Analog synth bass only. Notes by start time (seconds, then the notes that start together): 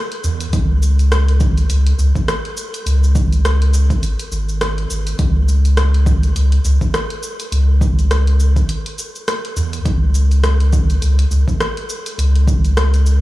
0.24 E2
0.53 C#2
1.70 C#2
1.99 C#2
2.86 C#2
4.03 G#1
4.32 G#1
4.91 G#1
5.19 C#2
6.36 C#2
6.65 C#2
7.52 C#2
9.57 E2
9.86 C#2
11.02 C#2
11.31 C#2
12.18 C#2